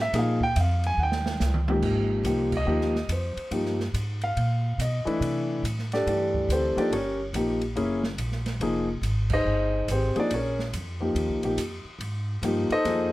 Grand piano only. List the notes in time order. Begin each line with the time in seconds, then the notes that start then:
0.02 E5
0.14 F3 A#3 D#4 G#4
0.19 F5
0.43 G5
0.56 E5
0.60 F5
0.87 G#5
0.99 F#5 G5
1.68 G#2 F3 A#3 D#4 G4
2.25 F3 A#3 D#4 G4
2.57 D#5
2.66 F3 A#3 D#4 G4
3.12 C5
3.51 F3 A#3 D#4 G4
4.24 F5
4.81 D#5
5.05 E3 A3 D4 E4
5.93 D4 G4 A4 D5
6.06 E3 A3 D4 G4
6.52 C4 G4 A4 C5
6.76 F3 A#3 D4 D#4 G4 A4 D5
6.93 C#4 G4 A#4 C#5
7.34 F3 A#3 D#4 G4
7.76 A#3 C#4 E4 G#4
8.61 F3 A#3 D#4 G#4
9.33 D#4 G#4 C5 D#5
9.91 C4 G4 G#4 C5
10.15 F3 A#3 D#4 G#4
10.19 D4 D5
10.34 C#4 G#4 A#4 C#5
11.01 F3 A#3 D#4 G4
11.44 F3 A#3 D#4 G4
12.43 F3 A#3 D#4 G4
12.72 D#4 A4 C5 D#5
12.85 F3 A#3 D#4 G#4